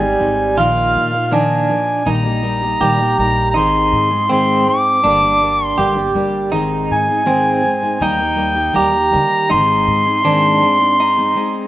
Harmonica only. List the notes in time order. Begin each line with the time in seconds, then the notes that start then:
Already playing: G#5
0.59 F5
1.34 G#5
2.11 A#5
3.19 A#5
3.51 A#5
3.57 C6
4.32 C6
4.69 D6
5.65 C6
6.92 G#5
8.03 G5
8.77 A#5
9.52 C6